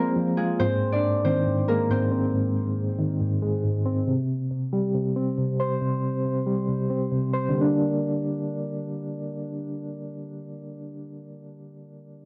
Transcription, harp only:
0.00 1.69 A#3 medium
0.00 0.60 C4 medium
0.00 0.93 D4 medium
0.00 1.68 A#4 medium
0.00 0.59 C5 medium
0.00 0.92 D5 medium
0.37 0.65 G#3 medium
0.37 2.65 G#4 medium
0.60 1.25 C4 medium
0.60 1.24 C5 loud
0.92 3.73 D4 medium
0.92 2.77 D5 medium
1.25 1.91 C4 medium
1.25 1.90 C5 medium
1.68 4.90 A#3 medium
1.68 3.80 A#4 medium
1.91 4.91 C4 medium
1.91 3.89 C5 medium

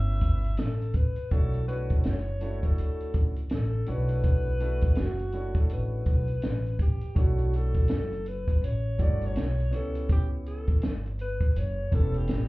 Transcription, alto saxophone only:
0.00 0.61 E5 loud
0.59 0.97 A4 medium
0.96 1.33 B4 medium
1.31 1.67 A4 loud
1.68 2.00 B4 medium
1.99 2.08 C5 medium
2.07 2.67 C#5 loud
2.66 3.27 A4 medium
3.54 3.93 A4 medium
3.91 5.02 B4 loud
5.01 5.62 F#4 medium
5.61 5.72 A4 medium
5.73 6.77 B4 medium
6.82 7.21 G4 medium
7.19 7.57 F#4 loud
7.56 8.29 A4 medium
8.28 8.66 B4 loud
8.64 9.03 C#5 loud
9.01 9.27 D5 loud
9.26 9.77 C#5 loud
9.75 10.10 A4 medium
10.12 10.28 G4 loud
10.47 10.92 A4 medium
11.21 11.60 B4 loud
11.58 11.96 C#5 medium
11.94 12.19 A4 medium
12.18 12.48 G4 medium

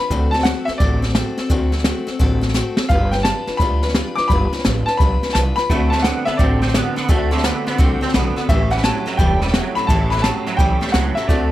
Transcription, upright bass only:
0.10 0.51 D2 loud
0.68 muted upright bass stroke medium
0.80 1.21 A1 medium
1.38 muted upright bass stroke medium
1.50 1.91 D2 medium
2.08 muted upright bass stroke medium
2.20 2.60 A1 medium
2.78 muted upright bass stroke medium
2.90 3.30 G1 medium
3.48 muted upright bass stroke medium
3.60 4.00 D2 medium
4.18 muted upright bass stroke medium
4.30 4.46 G1 loud
4.53 muted upright bass stroke medium
4.66 4.84 A1 medium
4.88 muted upright bass stroke medium
5.00 5.19 B1 medium
5.22 muted upright bass stroke medium
5.35 5.54 C2 medium
5.58 muted upright bass stroke medium
5.70 6.10 D2 loud
6.28 muted upright bass stroke medium
6.39 6.80 A1 medium
6.97 muted upright bass stroke medium
7.09 7.50 D2 loud
7.67 muted upright bass stroke medium
7.79 7.98 C2 medium
8.02 muted upright bass stroke medium
8.15 8.34 B1 medium
8.37 muted upright bass stroke medium
8.49 8.89 A1 loud
9.07 muted upright bass stroke medium
9.19 9.59 E1 medium
9.77 muted upright bass stroke medium
9.89 10.29 A1 loud
10.47 muted upright bass stroke medium
10.59 10.78 B1 medium
10.81 muted upright bass stroke medium
10.94 11.13 C#2 medium
11.29 11.52 D2 loud

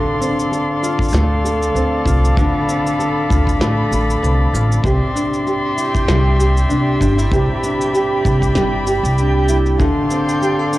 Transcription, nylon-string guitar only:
0.00 2.37 D3 medium
0.00 0.20 C4 medium
0.00 0.24 D4 medium
0.00 0.50 A4 medium
0.21 1.75 C4 medium
0.51 1.44 A4 medium
0.82 2.05 F4 medium
1.14 3.60 A3 medium
1.45 2.37 A4 medium
1.75 2.68 C4 medium
2.06 3.29 F4 medium
2.37 4.84 D3 medium
2.37 2.98 A4 medium
2.68 4.22 C4 medium
2.99 3.91 A4 medium
3.30 4.53 F4 medium
3.61 4.92 A3 medium
3.92 4.85 A4 medium
4.23 5.15 C4 medium
4.54 4.92 F4 medium
4.85 7.31 C3 medium
4.85 5.46 G4 medium
5.15 6.69 D4 medium
5.47 6.38 G4 medium
5.77 7.00 E4 medium
6.08 8.55 G3 medium
6.39 7.32 G4 medium
6.69 7.01 D4 medium
7.01 7.18 D4 medium
7.18 8.24 E4 medium
7.32 9.79 C3 medium
7.32 7.93 G4 medium
7.63 9.18 D4 medium
7.94 8.86 G4 medium
8.25 9.48 E4 medium
8.56 9.87 G3 medium
8.87 9.80 G4 medium
9.18 10.10 D4 medium
9.49 9.87 E4 medium
9.80 10.78 D3 medium
9.80 10.41 A4 medium
10.11 10.78 C4 medium
10.42 10.59 G4 medium
10.59 10.78 A4 medium
10.73 10.78 D4 medium

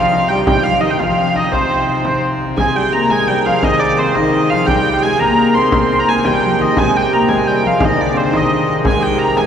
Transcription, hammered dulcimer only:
0.00 1.52 C4 medium
0.00 0.80 D#4 medium
0.00 0.11 F4 medium
0.00 0.30 G4 medium
0.11 0.99 F4 medium
0.30 0.46 G4 medium
0.47 2.63 G4 medium
0.80 1.35 D#4 medium
0.99 3.45 F4 medium
1.35 3.63 D#4 medium
1.52 3.98 C4 medium
2.57 2.80 G#4 medium
2.74 3.18 G4 medium
2.92 5.22 A#4 medium
3.12 4.76 G#4 medium
3.46 4.08 F4 medium
3.64 4.16 D#4 medium
3.99 7.99 C4 medium
4.09 4.51 F4 soft
4.17 6.59 D#4 medium
4.51 7.62 F4 medium
4.70 4.86 G4 medium
4.87 5.12 G4 medium
5.06 6.08 G#4 medium
5.22 5.38 A#4 medium
5.38 5.98 A#4 medium
5.55 5.73 C5 medium
5.73 8.37 C5 medium
5.98 7.12 A#4 medium
6.08 6.32 G#4 medium
6.26 6.83 G4 medium
6.59 7.81 D#4 medium
6.77 7.02 G#4 medium
6.96 7.35 G4 medium
7.12 9.17 A#4 medium
7.29 8.83 G#4 medium
7.62 9.46 F4 medium
7.81 8.02 D#4 medium
7.96 8.37 D4 medium
8.13 9.46 C4 medium
8.31 9.46 D#4 medium
8.84 9.05 G#4 medium
8.99 9.42 G4 medium
9.17 9.46 A#4 medium
9.36 9.46 G#4 medium

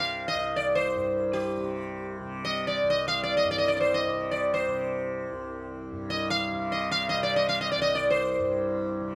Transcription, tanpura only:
0.00 0.34 C2 soft
0.00 0.95 G2 medium
0.00 1.56 C3 medium
0.34 2.82 C2 medium
0.95 3.44 G2 medium
1.56 2.20 C3 medium
2.20 4.06 C3 medium
2.83 5.31 C2 medium
3.44 5.91 G2 medium
4.06 4.68 C3 medium
4.68 6.52 C3 medium
5.31 7.76 C2 medium
5.92 8.38 G2 medium
6.52 7.13 C3 medium
7.13 9.01 C3 medium
7.77 9.15 C2 medium
8.38 9.15 G2 medium
9.01 9.15 C3 medium

